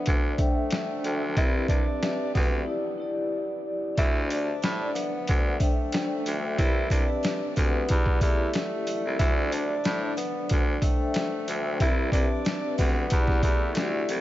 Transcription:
Already playing: B3 D4 A4 C5 D5 E5
0.06 D2, kick, closed hi-hat
0.37 A3 D4 A4 C5 E5 G5, kick, closed hi-hat
0.71 snare, closed hi-hat
1.04 D2, closed hi-hat
1.36 C2 C4 E4 G4 B4 D5 E5, kick, closed hi-hat
1.68 C2 D4, kick, closed hi-hat
2.03 snare, closed hi-hat
2.34 D2 B3, kick, open hi-hat
2.66 E4 G4 D5
2.98 E4 G4 D5
3.96 D2 D4 E4 A4 C5 D5 E5, kick, closed hi-hat, sleigh bells
4.30 D4, closed hi-hat, sleigh bells
4.62 A2, snare, closed hi-hat, sleigh bells
4.94 B3, closed hi-hat, sleigh bells
5.28 D2, kick, closed hi-hat, sleigh bells
5.59 A3 D4 A4 C5 E5 G5, kick, closed hi-hat, sleigh bells
5.92 snare, closed hi-hat, sleigh bells
6.26 D2, closed hi-hat, sleigh bells
6.58 C2 C4 E4 G4 B4 D5 E5, kick, closed hi-hat, sleigh bells
6.90 C2 D4, kick, closed hi-hat, sleigh bells
7.23 snare, closed hi-hat, sleigh bells
7.56 D2 B3, kick, closed hi-hat, sleigh bells
7.87 E2 E4 G4 D5, kick, closed hi-hat, sleigh bells
8.06 kick
8.20 E2 A3 E4 G4 D5, kick, closed hi-hat, sleigh bells
8.54 snare, closed hi-hat, sleigh bells
8.87 closed hi-hat, sleigh bells
9.06 C2
9.17 D2 D4 E4 A4 C5, kick, closed hi-hat, sleigh bells
9.52 D4, closed hi-hat, sleigh bells
9.84 A2, snare, closed hi-hat, sleigh bells
10.17 B3, closed hi-hat, sleigh bells
10.49 D2, kick, closed hi-hat, sleigh bells
10.81 A3 D4 A4 C5 E5 G5, kick, closed hi-hat, sleigh bells
11.14 snare, closed hi-hat, sleigh bells
11.48 D2, closed hi-hat, sleigh bells
11.79 C2 C4 E4 G4 B4 E5, kick, closed hi-hat, sleigh bells
12.12 C2 D4, kick, closed hi-hat, sleigh bells
12.45 snare, closed hi-hat, sleigh bells
12.78 D2 B3, kick, open hi-hat, sleigh bells
13.09 E2 E4 G4 D5, kick, closed hi-hat, sleigh bells
13.28 kick, snare
13.41 E2 A3 E4 G4 D5, kick, closed hi-hat, sleigh bells
13.75 D2, snare, closed hi-hat, sleigh bells
14.09 C2, closed hi-hat, sleigh bells

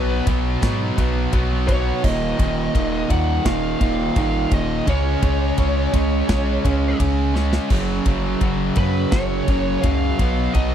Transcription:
Already playing: B1 B2 F#3 B3 B4
0.26 B1 B2 F#3 B3, kick, ride
0.62 G#2 B2 F#3 B3, kick, snare, ride
0.97 B1 B2 F#3 B3, kick, ride
1.33 B1 B2 F#3 B3, kick, ride
1.68 B2 F#3 B3 C#5, kick, ride
2.04 D#1 D#2 A#2 D#3 D#5, kick, crash
2.38 D#1 D#2 A#2 D#3, kick, ride
2.74 D#1 D#2 A#2 D#3, kick, ride
3.09 D#2 A#2 D#3 F#5, kick, ride
3.45 D#1 D#2 A#2 D#3 F5, kick, snare, ride
3.81 D#1 D#2 A#2 D#3, kick, ride
4.16 G#1 D#2 A#2 D#3, kick, ride
4.51 D#1 D#2 A#2 D#3 D#5, kick, ride
4.87 C#2 C#3 G#3 C#4 C#5, kick, ride
5.22 C#2 C#3 G#3 C#4, kick, ride
5.58 C#2 C#3 G#3 C#4, kick, ride
5.93 C#2 C#3 G#3 C#4, kick, ride
6.27 B1 C#3 G#3 C#4, kick, snare, ride
6.64 C#2 C#3 G#3 C#4, kick, ride
6.99 C#2 C#3 G#3 C#4, kick, ride
7.34 C#3 G#3 C#4, snare
7.53 snare
7.70 F#1 F#2 C#3 F#3, kick, crash
8.06 F#1 F#2 C#3 F#3, kick, ride
8.41 F#1 F#2 C#3 F#3, kick, ride
8.75 F#2 C#3 F#3 B4, kick, ride
9.11 F#1 F#2 C#3 F#3 C#5, kick, snare, ride
9.48 F#1 F#2 C#3 F#3, kick, ride
9.82 C#2 F#2 C#3 F#3 F5, kick, ride
10.19 B1 B2 F#3 B3, kick, ride
10.53 B1 B2 F#3 B3 D#5, kick, ride

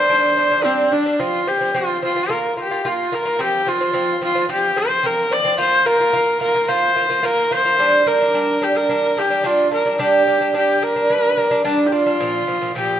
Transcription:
Already playing: C5
0.10 G3 D4
0.37 G3 D4
0.51 G3 D4
0.64 G3 C4 D4
0.92 G3 D4
1.06 G3 D4
1.19 F3 C4 F4
1.47 F3 C4 G4
1.60 F3 C4
1.74 F3 C4 F4
2.02 F3 C4 F4
2.16 F3 C4
2.29 A#3 F4 A#4
2.57 A#3 F4
2.62 G4
2.71 A#3 F4
2.85 A#3 F4
3.12 A#3 F4 A#4
3.25 A#3 F4
3.39 F3 C4 G4
3.66 F3 C4 F4
3.80 F3 C4
3.93 F3 C4
4.22 F3 C4 F4
4.35 F3 C4
4.49 F3 C4 G4
4.76 F3 C4 C5
4.89 F3 C4
5.03 F3 C4 A#4
5.31 F3 C4 D5
5.45 F3 C4
5.58 A#3 F4 C5
5.86 A#3 F4 A#4
6.00 A#3 F4
6.13 A#3 F4
6.41 A#3 F4 A#4
6.54 A#3 F4
6.68 A#3 F4 C5
6.96 A#3 F4
7.09 A#3 F4
7.23 A#3 F4 A#4
7.51 A#3 F4 C5
7.65 A#3 F4
7.79 G3 D4
8.06 G3 D4 A#4
8.21 G3 D4
8.34 G3 D4
8.61 G3 D4 G4
8.75 G3 D4 A#4
8.89 G3 D4
9.17 G3 D4 G4
9.30 G3 D4
9.44 G3 D4 F4
9.71 G3 D4 A#4
9.85 G3 D4
9.99 G3 D4 G4
10.27 G3 D4
10.41 G3 D4
10.54 G3 D4 G4
10.82 G3 D4 A#4
10.96 G3 D4
11.10 G3 D4
11.37 G3 D4
11.51 G3 D4
11.64 G3 D4
11.86 G4
11.92 G3 D4 F4
12.06 G3 D4
12.20 A#2 F3
12.47 A#2 F3
12.61 A#2 F3
12.75 A#2 F3 G4

